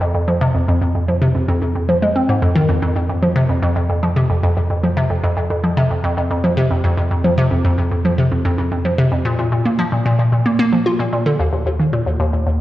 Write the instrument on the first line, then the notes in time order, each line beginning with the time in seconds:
synth arpeggio sound
0.01 F2
0.15 F2
0.28 F3
0.41 C3
0.55 F2
0.68 F2
0.81 F2
0.95 F2
1.08 F3
1.22 C3
1.35 F2
1.48 F2
1.62 F2
1.75 F2
1.88 F3
2.02 G#3
2.15 C4
2.29 G#2
2.42 F2
2.56 D#3
2.69 F2
2.82 F2
2.96 F2
3.09 F2
3.23 F3
3.36 C3
3.49 F2
3.63 F2
3.76 F2
3.90 F2
4.03 F3
4.16 C3
4.30 F2
4.43 F2
4.57 F2
4.70 F2
4.83 F3
4.97 C3
5.10 F2
5.24 F2
5.37 F2
5.50 F2
5.64 F3
5.77 C3
5.91 F2
6.04 F2
6.17 F2
6.31 F2
6.44 F3
6.57 C3
6.71 F2
6.84 F2
6.97 F2
7.11 F2
7.24 F3
7.38 C3
7.51 F2
7.64 F2
7.78 F2
7.91 F2
8.05 F3
8.18 C3
8.31 F2
8.45 F2
8.58 F2
8.72 F2
8.85 F3
8.98 C3
9.12 F2
9.25 A#2
9.39 A#2
9.52 A#2
9.65 A#3
9.79 F3
9.92 A#2
10.05 A#2
10.19 A#2
10.32 A#2
10.46 A#3
10.59 A#3
10.72 F3
10.86 F4
10.99 A#2
11.13 A#2
11.26 D3
11.39 D#2
11.53 D#2
11.66 D#2
11.80 D#3
11.93 A#2
12.06 D#2
12.20 D#2
12.33 D#2
12.47 D#2